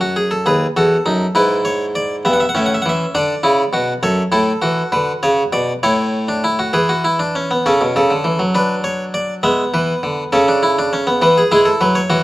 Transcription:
Already playing: F#2 C#5
0.01 F#4
0.16 G#4
0.31 A4
0.46 D#2 G#4 B4
0.77 E2 F#4 A4
1.06 F#2 D#4
1.35 G#2 E4 B4
1.65 C#5
1.95 D5
2.25 G2 B3 E5
2.33 F#5
2.40 E5
2.49 F#5
2.55 A2 C#4 E5
2.66 F#5
2.74 E5
2.82 E3 F#5
2.89 E5
3.15 D3 D4 D5
3.43 C#3 E4
3.73 B2 F#4
4.03 F#2 A4 C#5
4.32 A2 E4 A4
4.62 E3 F#4
4.92 D3 B4
5.23 C#3 C#5
5.53 B2 D5
5.83 A2 E4 C#5
6.28 D4
6.44 E4
6.59 F#4
6.73 E3 G#4 B4
6.89 F#4
7.04 E4
7.19 D4
7.35 C#4
7.51 B3
7.66 C#3 C#4 A4
7.81 B2
7.96 C#3 A4
8.10 D3
8.24 E3
8.39 F#3
8.55 D4 B4
8.84 C#5
9.14 D5
9.43 G#3 B3 E5
9.74 E3 B4
10.03 D3
10.32 C#3 C#4 A4
10.48 D4
10.63 E4
10.79 D4
10.93 C#4
11.07 B3
11.22 E3 B3 B4
11.38 G#4
11.52 G#3 E4 G#4
11.65 A4
11.81 F#3 B4
11.95 C#5
12.10 E3 F#4

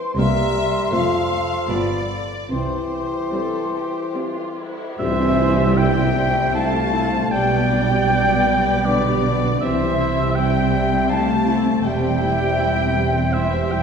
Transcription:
Already playing: C5 C6
0.17 C2 G3 A#3 C4 G4 A#4 C5 E5 C6
0.92 F1 F2 F3 A3 C4 F4 A4 C5 F5
1.69 G1 G2 G3 B3 F4 G4 D5 B5
2.50 C2 C3 E3 C4 E4 G4 C5 C6
3.33 G3 C4 A4
3.76 G4
4.15 G3 C4 F4
4.60 E4
4.99 C2 E3 G3 C5 E5, tam-tam
5.18 C4
5.38 E4
5.57 G4
5.77 G3 E4 E5 G5
5.97 C4
6.15 G3
6.35 C4
6.54 A3 E4 F5 A5
6.73 G4
6.93 E4
7.13 C4
7.32 B1 B2 G3 D5 G5
7.50 B3
7.70 D4
7.88 G4
8.07 D4
8.27 B3
8.46 G3
8.66 B3
8.85 D3 D4 B4 D5
9.05 G4
9.25 D4
9.45 B3
9.61 C2 C3 E3 G3 C4 C5 E5
9.81 C4
10.00 E4
10.19 G4
10.35 G3 E4 E5 G5
10.55 C4
10.74 G3
10.92 C4
11.09 A3 E4 F5 A5
11.28 G4
11.48 E4
11.66 C4
11.82 E1 E2 G3 E5 G5
12.03 C4
12.21 E4
12.40 G4
12.58 E4
12.77 C4
12.96 G3
13.14 C4
13.32 E3 E4 C5 E5
13.54 G4
13.70 G3 E4 E5 G5

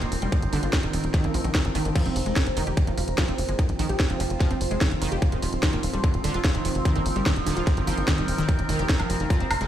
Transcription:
Already playing: F3 C4 D#4 A#4 A#5
0.02 D#1 A#3, closed hi-hat
0.12 D#1, open hi-hat
0.22 F1 G3, closed hi-hat
0.32 D3, kick, closed hi-hat
0.42 G1, closed hi-hat
0.53 G1 D3, open hi-hat
0.63 G1 F4, closed hi-hat
0.73 kick, snare, closed hi-hat
0.83 D#1 D#3, closed hi-hat
0.93 D#1 D#3, open hi-hat
1.04 D#1, closed hi-hat
1.14 D#3, kick, snare, closed hi-hat
1.24 A#1 A#3, closed hi-hat
1.34 A#1 F3, open hi-hat
1.44 A#1 D#3, closed hi-hat
1.55 D#3, kick, snare, closed hi-hat
1.65 G1, closed hi-hat
1.75 G1 D#3, open hi-hat
1.85 G1 D#3, closed hi-hat
1.95 F3 C4 F4, kick, closed hi-hat, crash
2.06 F1 C4, closed hi-hat
2.16 F1, open hi-hat
2.26 F1 G#3, closed hi-hat
2.36 D#3, kick, snare, closed hi-hat
2.46 F1 C5, closed hi-hat
2.57 F1 D#3, open hi-hat
2.67 F1 G4, closed hi-hat
2.77 kick, closed hi-hat
2.82 C6
2.87 F1 F3, closed hi-hat
2.98 F1 F3, open hi-hat
3.08 F1, closed hi-hat
3.18 F3, kick, snare, closed hi-hat
3.28 F1 C4, closed hi-hat
3.38 F1, open hi-hat
3.49 G1 G#3, closed hi-hat
3.59 D#3, kick, closed hi-hat
3.69 A#1, closed hi-hat
3.79 A#1 D#3, open hi-hat
3.89 A#1 G4, closed hi-hat
4.00 kick, snare, closed hi-hat
4.10 F1 F3, closed hi-hat
4.20 F1 F3, open hi-hat
4.30 F1, closed hi-hat
4.40 F3, kick, snare, closed hi-hat
4.51 F1 C4, closed hi-hat
4.61 F1, open hi-hat
4.71 F1 G#3, closed hi-hat
4.81 D#3, kick, snare, closed hi-hat
4.91 F1, closed hi-hat
5.02 F1 D#3, open hi-hat
5.12 F1 G4, closed hi-hat
5.22 D#4, kick, closed hi-hat
5.32 D#1 D#3, closed hi-hat
5.42 D#1 D#3, open hi-hat
5.48 A#4
5.53 D#1, closed hi-hat
5.63 D#3, kick, snare, closed hi-hat
5.73 D#1 A#3, closed hi-hat
5.83 D#1, open hi-hat
5.93 D#1 G3 A#5, closed hi-hat
6.04 D3, kick, closed hi-hat
6.14 D#1, closed hi-hat
6.24 D#1 D3, open hi-hat
6.34 D#1 F4, closed hi-hat
6.44 kick, snare, closed hi-hat
6.55 D#1 D#3, closed hi-hat
6.65 D#1 D#3, open hi-hat
6.75 F1, closed hi-hat
6.85 D#3, kick, closed hi-hat
6.95 G1 A#3, closed hi-hat
7.06 G1, open hi-hat
7.16 G1 G3, closed hi-hat
7.26 D3, kick, snare, closed hi-hat
7.36 D#1, closed hi-hat
7.46 D#1 D3, open hi-hat
7.57 D#1 F4, closed hi-hat
7.67 kick, snare, closed hi-hat
7.77 G1 D#3, closed hi-hat
7.87 G1 F3, open hi-hat
7.98 G1, closed hi-hat
8.08 D#3, kick, snare, closed hi-hat
8.18 D#1 G3, closed hi-hat
8.28 D#1, open hi-hat
8.38 D#1 D#3, closed hi-hat
8.49 D#3 F4, kick, closed hi-hat
8.59 F1, closed hi-hat
8.69 F1 D#3 C5, open hi-hat
8.79 F1 G4, closed hi-hat
8.89 kick, snare, closed hi-hat
9.00 F1 F3, closed hi-hat, high woodblock
9.10 F1 F3, open hi-hat
9.20 F1 D#3, closed hi-hat
9.30 F3, kick, closed hi-hat
9.40 F1 C4, closed hi-hat
9.51 F1, open hi-hat, high woodblock
9.61 F1 G#3, closed hi-hat

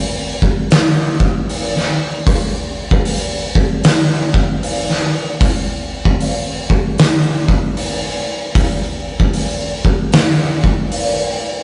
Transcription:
0.42 kick
0.71 snare, open hi-hat
1.20 kick
1.49 open hi-hat
1.76 snare
2.27 kick, open hi-hat
2.91 kick
3.05 open hi-hat
3.55 kick
3.83 snare, open hi-hat
4.34 kick
4.63 open hi-hat
4.89 snare
5.41 kick, open hi-hat
6.05 kick
6.20 open hi-hat
6.70 kick
6.98 snare, open hi-hat
7.48 kick
7.77 open hi-hat
8.55 kick, open hi-hat
9.20 kick
9.33 open hi-hat
9.85 kick
10.12 snare, open hi-hat
10.64 kick
10.92 open hi-hat

